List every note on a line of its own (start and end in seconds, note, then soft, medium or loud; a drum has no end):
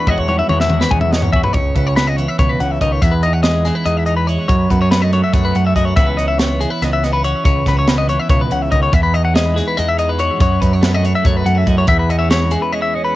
0.07 0.41 E2 medium
0.07 1.55 E2 medium
0.07 0.49 E3 medium
0.07 0.71 G#3 medium
0.07 0.28 C#4 medium
0.07 0.19 D#5 medium
0.07 kick loud
0.11 1.35 F#4 medium
0.18 0.27 C#5 medium
0.18 kick medium
0.28 1.13 C#4 medium
0.28 0.38 C#5 medium
0.28 high tom medium
0.39 0.49 E5 medium
0.39 high tom medium
0.49 0.83 E2 medium
0.49 1.53 E3 medium
0.49 0.60 C#5 medium
0.49 mid tom medium
0.60 0.81 E5 medium
0.60 snare medium
0.70 1.53 G#3 medium
0.70 mid tom medium
0.81 0.92 B4 medium
0.81 snare medium
0.91 1.42 E2 medium
0.91 1.53 B2 medium
0.91 1.00 G#5 medium
0.91 kick loud
1.01 1.11 E5 medium
1.01 mid tom medium
1.11 1.22 D#5 medium
1.11 snare medium
1.16 1.54 C#4 medium
1.22 1.32 C#5 medium
1.22 floor tom medium
1.32 1.53 F#4 medium
1.32 1.43 E5 medium
1.32 kick medium
1.44 1.53 B4 medium
1.44 floor tom medium
1.53 1.71 C#2 medium
1.53 2.18 C#3 medium
1.53 1.75 C#5 medium
1.53 kick loud
1.53 closed hi-hat medium
1.75 2.26 C#2 medium
1.75 3.01 C#4 medium
1.75 1.87 B4 medium
1.75 kick medium
1.75 closed hi-hat soft
1.87 1.96 C#5 medium
1.96 3.00 B3 medium
1.96 2.07 B4 medium
1.96 snare loud
1.96 closed hi-hat medium
2.07 2.16 D#5 medium
2.16 2.81 E3 medium
2.16 2.28 C#5 medium
2.16 closed hi-hat medium
2.28 2.39 E5 medium
2.39 2.56 C#2 medium
2.39 2.61 B2 medium
2.39 2.50 C#5 medium
2.39 kick medium
2.39 closed hi-hat medium
2.49 2.60 B4 medium
2.60 2.77 C#2 medium
2.60 2.82 C#3 medium
2.60 2.71 F#5 medium
2.60 closed hi-hat medium
2.71 2.81 E5 medium
2.81 2.98 C#2 medium
2.81 3.02 D#3 medium
2.81 2.92 D#5 medium
2.81 kick medium
2.81 closed hi-hat medium
2.92 3.02 C#5 medium
3.02 3.69 E2 medium
3.02 4.48 E2 medium
3.02 3.13 E5 medium
3.02 kick loud
3.02 closed hi-hat medium
3.12 3.23 B4 medium
3.23 4.07 D#4 medium
3.23 3.33 D#5 medium
3.23 closed hi-hat medium
3.33 3.43 F#5 medium
3.43 3.65 D#5 medium
3.43 snare medium
3.43 closed hi-hat medium
3.48 3.87 G#3 medium
3.65 4.51 E3 medium
3.65 3.75 G#4 medium
3.65 snare soft
3.65 closed hi-hat medium
3.75 3.86 B4 medium
3.86 4.37 E2 medium
3.86 4.51 G#3 medium
3.86 3.97 D#5 medium
3.86 closed hi-hat medium
3.97 4.06 E5 medium
4.06 4.48 D#4 medium
4.06 4.16 D#5 medium
4.06 closed hi-hat medium
4.17 4.27 B4 medium
4.27 4.38 E4 medium
4.27 4.47 C#5 medium
4.27 closed hi-hat medium
4.38 4.49 F#4 medium
4.48 5.94 F#2 medium
4.48 4.66 F#2 medium
4.48 4.71 C#5 medium
4.48 kick loud
4.48 closed hi-hat medium
4.70 5.21 F#2 medium
4.70 4.81 B3 medium
4.70 4.81 B4 medium
4.70 kick medium
4.70 closed hi-hat medium
4.81 5.52 C#4 soft
4.81 4.91 C#5 medium
4.91 5.32 A3 medium
4.91 5.02 B4 medium
4.91 snare loud
4.91 closed hi-hat medium
5.02 5.13 D#5 medium
5.13 5.95 F#3 medium
5.13 5.23 C#5 medium
5.13 closed hi-hat medium
5.24 5.33 E5 medium
5.33 5.51 F#2 medium
5.33 5.94 A3 medium
5.33 5.44 C#5 medium
5.33 kick loud
5.33 closed hi-hat medium
5.45 5.56 B4 medium
5.52 5.73 F#2 medium
5.52 5.65 B3 medium
5.52 5.66 F#5 medium
5.52 closed hi-hat medium
5.65 5.97 C#4 soft
5.65 5.76 E5 medium
5.76 5.93 F#2 medium
5.76 5.98 E4 medium
5.76 5.85 D#5 medium
5.76 kick medium
5.76 closed hi-hat medium
5.85 5.96 C#5 medium
5.96 6.64 C#2 medium
5.96 6.60 C#3 medium
5.96 6.60 E3 medium
5.96 6.39 B3 medium
5.96 6.18 C#4 medium
5.96 7.24 E4 medium
5.96 6.08 E5 medium
5.96 kick loud
5.96 closed hi-hat medium
6.07 6.18 B4 medium
6.17 7.03 C#4 medium
6.17 6.28 D#5 medium
6.17 closed hi-hat medium
6.28 6.38 E5 medium
6.38 6.82 B3 medium
6.38 6.60 C#5 medium
6.38 snare loud
6.38 closed hi-hat medium
6.61 8.07 E3 medium
6.61 6.70 G#4 medium
6.61 closed hi-hat medium
6.70 6.82 B4 medium
6.82 7.32 C#2 medium
6.82 7.04 B3 medium
6.82 6.93 D#5 medium
6.82 snare soft
6.82 closed hi-hat medium
6.93 7.04 E5 medium
7.04 7.13 B3 medium
7.04 7.13 D#5 medium
7.04 snare soft
7.04 closed hi-hat medium
7.13 7.45 C#4 soft
7.13 7.24 B4 medium
7.24 7.43 F#4 medium
7.24 7.44 C#5 medium
7.24 closed hi-hat medium
7.44 7.62 C#2 medium
7.44 8.08 C#3 medium
7.44 7.67 C#5 medium
7.44 kick loud
7.44 closed hi-hat medium
7.66 8.17 C#2 medium
7.66 7.77 B3 medium
7.66 7.78 B4 medium
7.66 kick medium
7.66 snare soft
7.66 closed hi-hat medium
7.77 8.93 C#4 soft
7.77 7.88 C#5 medium
7.87 8.91 B3 medium
7.87 7.98 B4 medium
7.87 snare loud
7.87 closed hi-hat medium
7.98 8.09 D#5 medium
8.08 8.70 E3 medium
8.08 8.19 C#5 medium
8.08 closed hi-hat medium
8.19 8.30 E5 medium
8.29 8.46 C#2 medium
8.29 8.49 B2 medium
8.29 8.41 C#5 medium
8.29 kick loud
8.29 closed hi-hat medium
8.41 8.51 B4 medium
8.50 8.68 C#2 medium
8.50 8.71 C#3 medium
8.50 8.62 F#5 medium
8.50 closed hi-hat medium
8.62 8.71 E5 medium
8.70 8.89 C#2 medium
8.70 8.92 D#3 medium
8.70 8.82 D#5 medium
8.70 kick medium
8.70 closed hi-hat medium
8.83 8.94 C#5 medium
8.92 10.38 E2 medium
8.92 9.60 E2 loud
8.92 9.03 E5 medium
8.92 kick loud
8.92 closed hi-hat medium
9.03 9.14 B4 medium
9.14 9.96 D#4 medium
9.14 9.24 D#5 medium
9.14 closed hi-hat medium
9.25 9.35 F#5 medium
9.34 9.77 G#3 medium
9.34 9.57 D#5 medium
9.34 snare loud
9.34 closed hi-hat medium
9.54 10.41 E3 medium
9.54 9.67 G#4 medium
9.54 closed hi-hat medium
9.58 snare soft
9.68 9.77 B4 medium
9.77 10.29 E2 medium
9.77 10.41 G#3 medium
9.77 9.88 D#5 medium
9.77 closed hi-hat medium
9.88 9.99 E5 medium
9.97 10.38 D#4 medium
9.97 10.09 D#5 medium
9.97 closed hi-hat medium
10.09 10.20 B4 medium
10.18 11.66 F#4 medium
10.18 10.40 C#5 medium
10.18 closed hi-hat medium
10.38 11.85 F#2 medium
10.38 10.57 F#2 medium
10.38 10.61 C#5 medium
10.38 kick loud
10.38 closed hi-hat medium
10.60 11.13 F#2 medium
10.60 11.44 C#4 medium
10.60 10.73 B4 medium
10.60 kick medium
10.60 closed hi-hat medium
10.73 10.83 C#5 medium
10.81 11.21 A3 medium
10.81 10.94 B4 medium
10.81 snare loud
10.81 closed hi-hat medium
10.94 11.05 D#5 medium
11.01 11.84 F#3 medium
11.01 closed hi-hat medium
11.05 11.15 C#5 medium
11.15 11.26 E5 medium
11.22 11.42 F#2 medium
11.22 11.84 A3 medium
11.22 11.37 C#5 medium
11.22 kick loud
11.22 closed hi-hat medium
11.37 11.47 B4 medium
11.45 11.63 F#2 medium
11.45 11.55 B3 medium
11.45 11.58 F#5 medium
11.45 closed hi-hat medium
11.55 11.88 C#4 soft
11.55 11.68 E5 medium
11.66 11.84 F#2 medium
11.66 13.14 E4 medium
11.66 11.78 D#5 medium
11.66 kick medium
11.66 closed hi-hat medium
11.78 11.88 C#5 medium
11.87 13.16 E2 medium
11.87 12.55 E2 loud
11.87 11.99 E5 medium
11.87 kick loud
11.87 closed hi-hat medium
11.99 12.10 B4 medium
12.09 12.19 B3 medium
12.09 12.18 D#5 medium
12.09 closed hi-hat medium
12.19 12.93 C#4 medium
12.19 12.30 E5 medium
12.30 12.72 G#3 medium
12.30 12.52 C#5 medium
12.30 snare loud
12.30 closed hi-hat medium
12.51 13.16 E3 medium
12.51 12.62 G#4 medium
12.51 closed hi-hat medium
12.62 12.72 B4 medium
12.72 13.16 G#3 medium
12.72 12.82 D#5 medium
12.82 12.94 E5 medium
12.94 13.16 C#4 medium
12.94 13.04 D#5 medium
13.05 13.15 B4 medium